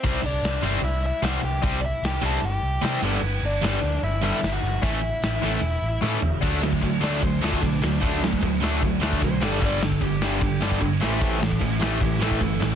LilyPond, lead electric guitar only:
\new Staff \with { instrumentName = "Lead electric guitar" } { \time 4/4 \key d \major \tempo 4 = 150 << { c''8 d''4 r8 e''8 e''8 fis''8 g''8 | g''16. d''32 e''8 g''8 a''8 g''4. b'8~ | b'8 d''4. e''8 e''8. fis''8. | e''2. r4 |
r4. d''8 c''8 f'8 d'4~ | d'4 r2 c''8 a'8 | d''8 a'8 g'8 g'4 r4 c''8 | c''8 a'8 a'8 g'8 g'8 a'4. | } \\ { c'8 d'4 r8 e'8 e'8 fis'8 g'8 | g'8 e'8 g'8 a'8 g'4. b8~ | b8 d'4. e'8 e'8. fis'8. | e'2. r4 |
r1 | r1 | r2. r8 g'8 | g'8 e'8 e'8 e'8 e'8 r4. | } >> }